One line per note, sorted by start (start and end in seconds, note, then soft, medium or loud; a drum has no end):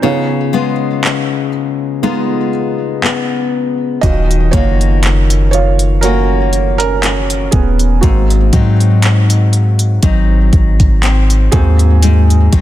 0.00 4.02 C#3 medium
0.00 0.14 F#3 medium
0.00 0.71 B3 medium
0.00 0.14 C4 medium
0.00 0.14 D#4 medium
0.00 0.71 D#4 soft
0.00 1.49 C#5 medium
0.04 1.50 F4 medium
0.53 2.02 G#3 medium
0.53 2.02 B3 medium
0.53 2.03 F4 medium
1.04 clap loud
2.03 4.14 G#3 medium
2.03 2.49 B3 soft
2.03 3.02 B3 medium
2.03 2.49 D#4 soft
2.03 2.49 F4 medium
2.03 4.14 F4 medium
3.03 4.14 B3 medium
3.03 clap loud
4.01 4.51 D#1 loud
4.01 8.03 D#3 medium
4.01 6.01 F#3 medium
4.01 6.01 C#4 soft
4.01 4.52 F4 medium
4.01 4.50 F#4 medium
4.01 4.49 D#5 loud
4.01 kick loud
4.01 closed hi-hat medium
4.31 closed hi-hat soft
4.51 7.49 F#1 loud
4.51 6.02 A#3 medium
4.51 6.03 C#4 medium
4.51 5.49 F4 medium
4.51 6.04 F#4 medium
4.51 5.48 C#5 loud
4.51 kick medium
4.51 closed hi-hat medium
4.81 closed hi-hat soft
5.03 clap loud
5.03 closed hi-hat medium
5.30 closed hi-hat medium
5.51 6.00 F4 medium
5.51 6.04 C#5 medium
5.51 closed hi-hat soft
5.79 closed hi-hat soft
6.01 6.49 F#3 soft
6.01 8.14 A#3 medium
6.01 6.76 C#4 medium
6.01 7.02 C#4 medium
6.01 6.49 F4 medium
6.01 8.54 F#4 medium
6.01 6.77 A#4 medium
6.01 closed hi-hat medium
6.53 closed hi-hat soft
6.78 7.49 C#4 medium
6.78 7.48 A#4 loud
6.78 closed hi-hat medium
7.03 8.14 C#4 medium
7.03 clap loud
7.03 closed hi-hat medium
7.30 closed hi-hat medium
7.51 8.01 D#1 loud
7.51 8.00 B3 medium
7.51 8.04 G#4 medium
7.51 kick medium
7.51 closed hi-hat medium
7.79 closed hi-hat soft
8.01 8.51 G#1 loud
8.01 11.52 G#2 medium
8.01 8.71 A#3 medium
8.01 9.49 C4 medium
8.01 8.03 F#4 medium
8.01 8.71 F#4 medium
8.01 kick loud
8.01 closed hi-hat medium
8.30 closed hi-hat soft
8.53 9.99 G#2 loud
8.53 10.03 F#3 medium
8.53 10.03 C4 medium
8.53 10.04 D#4 medium
8.53 kick medium
8.53 closed hi-hat medium
8.80 closed hi-hat soft
9.02 clap loud
9.02 closed hi-hat medium
9.30 closed hi-hat medium
9.53 closed hi-hat soft
9.79 closed hi-hat medium
10.03 10.51 G#1 loud
10.03 12.06 F#3 medium
10.03 11.03 C4 medium
10.03 12.54 D#4 medium
10.03 kick medium
10.03 closed hi-hat medium
10.53 11.49 G#1 loud
10.53 kick medium
10.53 closed hi-hat soft
10.80 kick medium
10.80 closed hi-hat medium
11.03 12.53 C4 medium
11.03 clap loud
11.03 closed hi-hat medium
11.30 closed hi-hat medium
11.52 12.49 D#2 loud
11.52 12.02 G#2 medium
11.52 12.61 A#3 medium
11.52 12.61 C4 medium
11.52 12.61 F#4 medium
11.52 12.61 G#4 medium
11.52 kick loud
11.52 closed hi-hat medium
11.79 closed hi-hat soft
12.03 12.61 G#2 medium
12.03 closed hi-hat medium
12.30 closed hi-hat soft
12.53 12.61 G#1 loud
12.53 12.61 F#3 medium
12.53 12.61 C4 medium
12.53 12.61 D#4 medium
12.53 kick loud
12.53 closed hi-hat medium